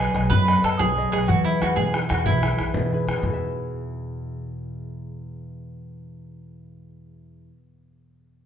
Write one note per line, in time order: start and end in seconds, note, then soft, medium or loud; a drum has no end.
0.00 0.79 F#3 medium
0.00 0.31 B3 medium
0.00 1.61 F#4 soft
0.00 0.27 G#4 medium
0.00 1.45 G#4 soft
0.00 1.38 A4 medium
0.00 0.14 B4 medium
0.00 0.14 C#5 medium
0.00 0.14 D#5 medium
0.00 0.31 G#5 loud
0.14 0.28 B1 loud
0.14 0.47 B4 medium
0.14 0.47 C#5 soft
0.14 0.48 D#5 medium
0.14 bodhran medium
0.30 0.58 F#2 loud
0.30 3.21 B3 medium
0.30 0.61 B4 loud
0.30 0.66 B5 loud
0.30 bodhran medium
0.47 0.60 B4 medium
0.47 0.63 C#5 medium
0.47 0.65 D#5 medium
0.47 bodhran medium
0.61 0.77 F#2 medium
0.61 0.80 A4 medium
0.61 0.96 B4 medium
0.61 0.97 C#5 soft
0.61 0.81 A5 loud
0.61 bodhran medium
0.65 0.98 D#5 medium
0.73 bodhran soft
0.79 1.07 B1 medium
0.79 1.34 F#3 medium
0.79 1.11 G#4 loud
0.79 1.13 G#5 loud
0.79 bodhran loud
0.97 1.11 B4 medium
0.97 1.12 C#5 soft
0.97 1.12 D#5 medium
0.97 bodhran soft
1.12 1.26 B1 loud
1.12 1.27 G#4 medium
1.12 1.46 B4 medium
1.12 3.04 C#5 soft
1.12 1.34 D#5 medium
1.12 1.29 G#5 loud
1.12 bodhran medium
1.28 1.56 E2 loud
1.28 1.83 E3 medium
1.28 1.44 F#4 medium
1.28 1.46 F#5 loud
1.28 bodhran medium
1.38 bodhran soft
1.45 1.60 E4 medium
1.45 1.61 E4 medium
1.45 1.62 G#4 medium
1.45 1.63 B4 medium
1.45 1.62 E5 medium
1.45 bodhran soft
1.61 1.75 E2 loud
1.61 1.94 E4 medium
1.61 1.76 F#4 medium
1.61 1.94 G#4 soft
1.61 1.95 B4 medium
1.61 1.80 F#5 medium
1.61 bodhran medium
1.76 2.05 E2 medium
1.76 2.74 B2 medium
1.76 1.93 G#4 medium
1.76 1.95 G#5 loud
1.76 bodhran medium
1.94 2.10 E4 medium
1.94 2.10 G#4 medium
1.94 2.11 B4 medium
1.94 bodhran medium
2.09 2.24 E2 loud
2.09 2.42 E4 medium
2.09 2.25 F#4 medium
2.09 2.43 G#4 soft
2.09 2.43 B4 medium
2.09 2.30 F#5 medium
2.09 bodhran medium
2.26 2.53 B1 loud
2.26 2.80 E3 medium
2.26 2.88 E4 medium
2.26 2.93 E5 medium
2.26 bodhran loud
2.43 2.59 E4 medium
2.43 2.59 G#4 soft
2.43 2.60 B4 medium
2.43 bodhran medium
2.59 2.73 B1 medium
2.59 2.92 E4 medium
2.59 2.92 G#4 soft
2.59 2.93 B4 medium
2.59 bodhran medium
2.67 bodhran soft
2.74 3.02 E2 medium
2.74 3.17 B2 medium
2.74 bodhran loud
2.92 3.08 E4 medium
2.92 3.08 G#4 medium
2.92 3.09 B4 medium
2.92 bodhran soft
3.07 3.21 E2 medium
3.07 3.25 E4 soft
3.07 3.29 G#4 soft
3.07 5.14 B4 medium
3.07 bodhran medium
3.14 7.48 E2 medium
3.14 7.51 B2 medium
3.21 7.57 E2 loud
3.21 7.55 B3 medium
3.21 bodhran medium
3.26 7.59 E4 medium
3.26 7.63 G#4 medium
3.33 7.67 E5 medium